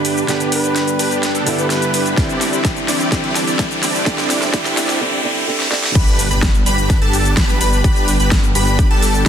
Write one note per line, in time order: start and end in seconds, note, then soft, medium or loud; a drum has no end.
0.00 0.25 G2 medium
0.00 0.25 D3 medium
0.00 2.14 D3 medium
0.00 0.26 G3 medium
0.00 0.26 B3 medium
0.00 2.14 B3 medium
0.00 0.26 G4 medium
0.00 4.97 G4 medium
0.00 4.97 D5 medium
0.00 riser medium
0.05 0.26 D4 medium
0.05 0.26 G4 medium
0.05 0.26 B4 medium
0.05 open hi-hat loud
0.05 shaker medium
0.17 shaker soft
0.27 1.43 G2 medium
0.27 1.43 D3 medium
0.27 1.44 G3 medium
0.27 1.44 B3 medium
0.27 0.61 D4 medium
0.27 0.61 G4 medium
0.27 1.44 G4 loud
0.27 0.61 B4 loud
0.27 snare medium
0.27 closed hi-hat medium
0.27 shaker soft
0.40 closed hi-hat soft
0.40 shaker soft
0.52 1.18 B4 medium
0.52 open hi-hat loud
0.52 shaker medium
0.64 0.82 D4 medium
0.64 0.82 G4 medium
0.64 0.82 B4 medium
0.64 closed hi-hat soft
0.64 shaker soft
0.76 snare medium
0.76 closed hi-hat medium
0.76 shaker soft
0.88 closed hi-hat soft
0.88 shaker soft
0.99 1.32 D4 loud
0.99 1.32 G4 medium
0.99 1.32 B4 loud
0.99 open hi-hat loud
0.99 shaker medium
1.11 closed hi-hat soft
1.11 shaker soft
1.23 snare medium
1.23 closed hi-hat medium
1.23 shaker soft
1.35 1.67 D4 medium
1.35 1.67 G4 medium
1.35 1.67 A4 medium
1.35 closed hi-hat soft
1.35 shaker soft
1.45 2.14 G2 medium
1.45 2.14 D3 medium
1.45 2.15 G3 medium
1.45 2.15 B3 medium
1.45 2.15 E4 loud
1.45 open hi-hat loud
1.45 shaker medium
1.58 1.68 B4 medium
1.58 closed hi-hat soft
1.58 shaker soft
1.70 1.91 D4 medium
1.70 1.91 G4 medium
1.70 1.91 B4 loud
1.70 2.17 B4 medium
1.70 snare medium
1.70 closed hi-hat medium
1.70 shaker soft
1.82 closed hi-hat soft
1.82 shaker soft
1.94 2.15 D4 medium
1.94 2.15 G4 medium
1.94 2.15 B4 medium
1.94 open hi-hat loud
1.94 shaker medium
2.06 closed hi-hat soft
2.06 shaker soft
2.16 3.09 D3 medium
2.16 4.98 E3 medium
2.16 3.10 G3 medium
2.16 2.50 C4 medium
2.16 4.98 C4 medium
2.16 3.10 C4 medium
2.16 2.50 D4 medium
2.16 2.50 E4 medium
2.16 3.11 E4 loud
2.16 2.50 G4 medium
2.16 2.50 D5 medium
2.16 kick loud
2.16 snare medium
2.16 closed hi-hat medium
2.16 shaker soft
2.29 closed hi-hat soft
2.29 shaker soft
2.41 snare medium
2.41 open hi-hat loud
2.41 shaker medium
2.53 2.71 C4 medium
2.53 2.71 D4 medium
2.53 2.71 E4 medium
2.53 2.71 G4 medium
2.53 2.71 D5 medium
2.53 closed hi-hat soft
2.53 shaker soft
2.65 kick loud
2.65 snare medium
2.65 closed hi-hat medium
2.65 shaker soft
2.77 closed hi-hat soft
2.77 shaker soft
2.88 3.10 C4 medium
2.88 3.10 D4 medium
2.88 3.10 E4 medium
2.88 3.10 G4 medium
2.88 3.10 D5 loud
2.88 snare medium
2.88 open hi-hat loud
2.88 shaker medium
3.00 closed hi-hat soft
3.00 shaker soft
3.11 4.04 D3 medium
3.11 4.04 G3 medium
3.11 3.45 C4 medium
3.11 4.05 C4 medium
3.11 3.45 D4 medium
3.11 3.45 E4 medium
3.11 4.05 E4 loud
3.11 3.45 G4 medium
3.11 3.45 D5 medium
3.11 kick loud
3.11 snare medium
3.11 closed hi-hat medium
3.11 shaker soft
3.24 closed hi-hat soft
3.36 snare medium
3.36 open hi-hat loud
3.36 shaker medium
3.47 3.65 C4 medium
3.47 3.65 D4 medium
3.47 3.65 E4 medium
3.47 3.65 G4 medium
3.47 3.65 D5 medium
3.47 closed hi-hat soft
3.47 shaker soft
3.59 kick loud
3.59 snare medium
3.59 closed hi-hat medium
3.59 shaker soft
3.71 closed hi-hat soft
3.71 shaker soft
3.83 4.04 C4 medium
3.83 4.04 D4 medium
3.83 4.04 E4 medium
3.83 4.04 G4 medium
3.83 4.04 D5 loud
3.83 snare medium
3.83 open hi-hat loud
3.83 shaker medium
3.95 shaker soft
4.05 4.51 D3 loud
4.05 4.52 G3 medium
4.05 4.39 C4 medium
4.05 4.52 C4 medium
4.05 4.39 D4 medium
4.05 4.39 E4 medium
4.05 4.52 E4 loud
4.05 4.39 G4 medium
4.05 4.39 D5 loud
4.05 kick loud
4.05 snare medium
4.05 closed hi-hat medium
4.05 shaker soft
4.18 snare medium
4.18 closed hi-hat soft
4.18 shaker soft
4.30 snare medium
4.30 open hi-hat loud
4.30 shaker medium
4.42 4.52 C4 medium
4.42 4.52 D4 medium
4.42 4.52 E4 medium
4.42 4.52 G4 medium
4.42 4.52 D5 medium
4.42 snare medium
4.42 closed hi-hat soft
4.42 shaker soft
4.52 4.98 D3 loud
4.52 4.99 G3 medium
4.52 4.86 C4 medium
4.52 4.99 C4 medium
4.52 4.86 D4 medium
4.52 4.86 E4 medium
4.52 5.00 E4 loud
4.52 4.86 G4 medium
4.52 4.86 D5 loud
4.52 kick loud
4.52 snare loud
4.52 closed hi-hat medium
4.52 shaker soft
4.65 snare medium
4.65 closed hi-hat soft
4.65 shaker soft
4.77 snare loud
4.77 open hi-hat loud
4.77 shaker medium
4.89 4.99 C4 medium
4.89 4.99 D4 medium
4.89 4.99 E4 medium
4.89 4.99 G4 medium
4.89 4.99 D5 medium
4.89 snare medium
4.89 closed hi-hat soft
4.89 shaker soft
5.00 5.22 D3 loud
5.00 5.22 G3 medium
5.00 5.23 C4 medium
5.00 5.23 E4 loud
5.23 5.46 D3 loud
5.23 5.46 G3 medium
5.23 5.46 C4 medium
5.23 5.47 E4 loud
5.47 5.69 D3 loud
5.47 5.70 G3 medium
5.47 5.70 C4 medium
5.47 5.70 E4 loud
5.60 snare medium
5.71 5.93 D3 loud
5.71 5.93 G3 loud
5.71 5.94 C4 loud
5.71 5.94 E4 loud
5.71 snare medium
5.84 snare medium
5.95 6.28 G1 loud
5.95 9.29 D3 medium
5.95 9.29 G3 medium
5.95 9.29 B3 medium
5.95 6.28 D4 medium
5.95 6.28 G4 medium
5.95 9.29 G4 medium
5.95 6.28 B4 loud
5.95 6.28 B5 loud
5.95 kick loud
5.95 closed hi-hat loud
5.95 crash loud
5.95 impact medium
5.95 shaker soft
6.07 closed hi-hat soft
6.07 shaker soft
6.19 open hi-hat loud
6.19 shaker medium
6.31 6.64 G1 medium
6.31 6.49 D4 medium
6.31 6.49 G4 medium
6.31 6.49 B4 medium
6.31 6.49 B5 medium
6.31 closed hi-hat soft
6.31 shaker soft
6.42 kick loud
6.42 snare loud
6.42 closed hi-hat loud
6.42 shaker soft
6.54 closed hi-hat soft
6.54 shaker soft
6.66 6.99 G1 medium
6.66 6.99 D4 loud
6.66 6.99 G4 loud
6.66 6.99 B4 loud
6.66 6.99 B5 loud
6.66 open hi-hat loud
6.66 shaker medium
6.78 closed hi-hat soft
6.78 shaker soft
6.90 kick loud
6.90 snare soft
6.90 closed hi-hat loud
6.90 shaker soft
7.02 7.35 G1 loud
7.02 7.34 D4 medium
7.02 7.34 G4 medium
7.02 7.34 A4 loud
7.02 7.34 A5 medium
7.02 closed hi-hat soft
7.13 open hi-hat loud
7.13 shaker medium
7.25 closed hi-hat soft
7.25 shaker soft
7.37 7.58 G1 loud
7.37 7.58 D4 medium
7.37 7.58 G4 medium
7.37 7.58 B4 loud
7.37 7.58 B5 loud
7.37 kick loud
7.37 snare loud
7.37 closed hi-hat medium
7.37 shaker soft
7.49 closed hi-hat soft
7.49 shaker soft
7.61 7.82 G1 loud
7.61 7.82 D4 medium
7.61 7.82 G4 medium
7.61 7.82 B4 medium
7.61 7.82 B5 medium
7.61 open hi-hat loud
7.61 shaker medium
7.73 shaker soft
7.84 8.17 G1 loud
7.84 8.17 D4 medium
7.84 8.17 G4 medium
7.84 8.17 B4 loud
7.84 8.17 B5 loud
7.84 kick loud
7.84 closed hi-hat medium
7.84 shaker soft
7.96 closed hi-hat soft
7.96 shaker soft
8.08 open hi-hat loud
8.08 shaker medium
8.20 8.53 G1 medium
8.20 8.38 D4 medium
8.20 8.38 G4 medium
8.20 8.38 B4 medium
8.20 8.38 B5 medium
8.20 closed hi-hat soft
8.20 shaker soft
8.31 kick loud
8.31 snare loud
8.31 closed hi-hat medium
8.31 shaker soft
8.43 closed hi-hat soft
8.43 shaker soft
8.55 8.88 G1 loud
8.55 8.88 D4 loud
8.55 8.88 G4 medium
8.55 8.88 B4 loud
8.55 8.88 B5 loud
8.55 open hi-hat loud
8.55 shaker medium
8.67 closed hi-hat soft
8.67 shaker soft
8.79 kick loud
8.79 closed hi-hat loud
8.79 shaker soft
8.91 9.24 G1 loud
8.91 9.23 D4 medium
8.91 9.23 G4 medium
8.91 9.23 A4 loud
8.91 9.23 A5 loud
8.91 closed hi-hat soft
9.02 open hi-hat loud
9.02 shaker medium
9.14 closed hi-hat soft
9.14 shaker soft